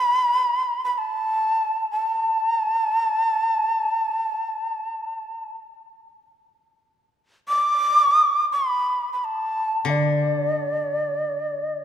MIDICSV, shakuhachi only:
0, 0, Header, 1, 2, 480
1, 0, Start_track
1, 0, Tempo, 500000
1, 11373, End_track
2, 0, Start_track
2, 0, Title_t, "Shakuhachi"
2, 0, Program_c, 0, 77
2, 0, Note_on_c, 0, 83, 98
2, 809, Note_off_c, 0, 83, 0
2, 814, Note_on_c, 0, 83, 65
2, 901, Note_off_c, 0, 83, 0
2, 901, Note_on_c, 0, 83, 81
2, 940, Note_on_c, 0, 81, 88
2, 950, Note_off_c, 0, 83, 0
2, 1826, Note_off_c, 0, 81, 0
2, 1835, Note_on_c, 0, 81, 86
2, 5311, Note_off_c, 0, 81, 0
2, 7184, Note_on_c, 0, 86, 103
2, 8121, Note_off_c, 0, 86, 0
2, 8182, Note_on_c, 0, 83, 75
2, 8733, Note_off_c, 0, 83, 0
2, 8764, Note_on_c, 0, 83, 60
2, 8875, Note_on_c, 0, 81, 80
2, 8889, Note_off_c, 0, 83, 0
2, 9497, Note_on_c, 0, 74, 62
2, 9511, Note_off_c, 0, 81, 0
2, 11373, Note_off_c, 0, 74, 0
2, 11373, End_track
0, 0, End_of_file